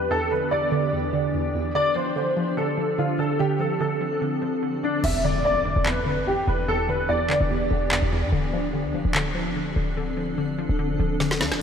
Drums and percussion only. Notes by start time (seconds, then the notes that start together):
5.04 crash
5.86 clap
7.30 clap
7.91 clap
9.15 clap
11.20 snare
11.31 snare
11.41 snare
11.52 snare